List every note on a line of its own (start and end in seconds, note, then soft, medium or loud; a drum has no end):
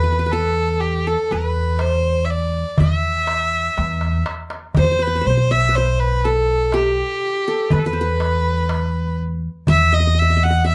0.00 1.14 E2 medium
0.00 0.32 A4 medium
0.00 0.33 B4 medium
0.00 0.12 B4 medium
0.12 0.19 B4 soft
0.19 0.26 B4 medium
0.26 1.32 B4 medium
0.31 0.82 A4 medium
0.31 1.07 A4 medium
0.80 1.08 G4 medium
0.80 darbuka ka soft
1.07 1.33 A4 medium
1.07 2.24 A4 medium
1.31 2.62 E2 medium
1.31 1.82 B4 medium
1.31 2.84 B4 medium
1.79 2.26 C5 medium
1.79 darbuka tek medium
2.25 2.31 E5 medium
2.30 2.81 D5 medium
2.78 3.67 E2 medium
2.78 4.27 E5 medium
2.78 4.23 E5 medium
2.78 darbuka dum loud
3.27 darbuka tek medium
3.77 4.21 E2 medium
3.77 darbuka tek soft
4.01 darbuka ka medium
4.26 darbuka tek medium
4.50 darbuka ka medium
4.74 5.20 E2 medium
4.74 4.84 C5 medium
4.74 5.03 C5 medium
4.74 darbuka dum medium
4.84 4.91 C5 medium
4.92 4.98 C5 medium
4.99 5.28 B4 medium
4.99 5.07 C5 medium
5.07 5.15 C5 medium
5.15 5.21 C5 soft
5.21 7.00 B1 medium
5.21 5.29 C5 medium
5.26 5.52 C5 medium
5.26 5.37 C5 soft
5.37 5.75 C5 medium
5.51 5.77 E5 medium
5.51 6.43 E5 medium
5.69 5.84 B4 medium
5.74 6.01 C5 medium
5.74 6.83 C5 medium
5.74 darbuka ka soft
5.99 6.26 B4 medium
6.25 6.75 A4 medium
6.25 7.42 A4 medium
6.72 7.74 G4 medium
6.72 7.99 G4 medium
6.72 darbuka tek medium
7.22 darbuka ka soft
7.48 8.65 A4 medium
7.70 9.46 E2 medium
7.70 7.86 B4 medium
7.70 7.80 B4 medium
7.70 darbuka dum medium
7.79 7.87 A4 medium
7.85 9.18 B4 medium
7.85 7.99 B4 medium
7.93 8.07 C5 soft
8.01 9.15 B4 medium
8.20 darbuka tek medium
8.69 darbuka tek medium
9.67 10.75 E2 loud
9.67 9.98 E5 medium
9.67 9.95 E5 medium
9.67 darbuka dum medium
9.92 10.00 D#5 medium
9.92 10.20 D#5 medium
10.00 10.07 D#5 medium
10.07 10.14 D#5 medium
10.15 10.21 D#5 soft
10.15 10.45 E5 medium
10.15 darbuka ka soft
10.22 10.30 D#5 medium
10.30 10.36 D#5 soft
10.37 10.45 D#5 medium
10.43 10.50 D#5 medium
10.43 10.67 F#5 medium
10.50 10.70 D#5 medium
10.64 10.75 E5 medium
10.64 darbuka ka soft